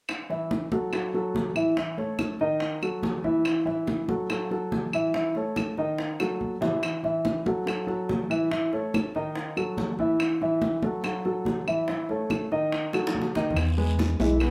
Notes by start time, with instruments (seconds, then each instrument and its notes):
0.09 high bongo, high conga, claves
0.30 grand piano E3 E4 E5, high bongo, high conga
0.51 high bongo, high conga
0.72 grand piano F#3 F#4 A4, high bongo, high conga
0.93 grand piano F#3 F#4 A4, high bongo, high conga, claves
1.13 grand piano F#3 F#4 A4, high bongo, high conga
1.35 high bongo, low bongo, high conga
1.55 grand piano E3 E4 E5, high conga, claves
1.77 grand piano E3 E4 E5, high bongo, high conga
1.97 grand piano A3 A4 C#5, high bongo, high conga
2.19 high bongo, high conga, claves
2.40 grand piano D#3 D#4 D#5, high bongo, high conga
2.60 high bongo, high conga
2.82 grand piano F#3 F#4 A4, high bongo, high conga, claves
3.03 high bongo, low bongo, high conga
3.24 grand piano E3 E4 E5, high conga
3.45 high bongo, high conga, claves
3.65 grand piano E3 E4 E5, high bongo, high conga
3.87 high bongo, high conga
4.08 grand piano F#3 F#4 A4, high bongo, high conga
4.30 grand piano F#3 F#4 A4, high bongo, high conga, claves
4.51 grand piano F#3 F#4 A4, high bongo, high conga
4.72 high bongo, low bongo, high conga
4.93 grand piano E3 E4 E5, high conga, claves
5.14 grand piano E3 E4 E5, high bongo, high conga
5.35 grand piano A3 A4 C#5, high bongo, high conga
5.56 high bongo, high conga, claves
5.77 grand piano D#3 D#4 D#5, high bongo, high conga
5.98 high bongo, high conga
6.19 grand piano F#3 F#4 A4, high bongo, high conga, claves
6.41 high conga
6.61 grand piano E3 E4 E5, low bongo
6.83 high bongo, high conga, claves
7.03 grand piano E3 E4 E5, high bongo, high conga
7.25 high bongo, high conga
7.46 grand piano F#3 F#4 A4, high bongo, high conga
7.66 grand piano F#3 F#4 A4, high bongo, high conga, claves
7.87 grand piano F#3 F#4 A4, high bongo, high conga
8.09 high bongo, low bongo, high conga
8.30 grand piano E3 E4 E5, high conga, claves
8.51 grand piano E3 E4 E5, high bongo, high conga
8.73 grand piano A3 A4 C#5, high bongo, high conga
8.94 high bongo, high conga, claves
9.15 grand piano D#3 D#4 D#5, high bongo, high conga
9.36 high bongo, high conga
9.57 grand piano F#3 F#4 A4, high bongo, high conga, claves
9.77 high bongo, low bongo, high conga
9.99 grand piano E3 E4 E5, high conga
10.20 high bongo, high conga, claves
10.41 grand piano E3 E4 E5, high bongo, high conga
10.62 high bongo, high conga
10.82 grand piano F#3 F#4 A4, high bongo, high conga
11.04 grand piano F#3 F#4 A4, high bongo, high conga, claves
11.25 grand piano F#3 F#4 A4, high bongo, high conga
11.45 high bongo, low bongo, high conga
11.67 grand piano E3 E4 E5, high conga, claves
11.88 grand piano E3 E4 E5, high bongo, high conga
12.09 grand piano A3 A4 C#5, high bongo, high conga
12.30 high bongo, high conga, claves
12.52 grand piano D#3 D#4 D#5, high bongo, high conga
12.72 high bongo, high conga
12.93 grand piano F#3 F#4 A4, high bongo, high conga, claves
13.07 high bongo
13.15 high conga
13.22 low bongo
13.35 grand piano D#3 D#4 D#5, low bongo, high conga
13.50 low conga
13.56 analog synth bass E2, high bongo, high conga, long guiro, claves
13.78 grand piano G#3 G#4 B4, high bongo, high conga
13.99 high bongo, high conga, short guiro
14.20 analog synth bass B1, grand piano E3 E4 E5, trombone G#3, high bongo, high conga, short guiro
14.40 grand piano G#3 G#4 B4, trombone B3, high bongo, high conga, long guiro, claves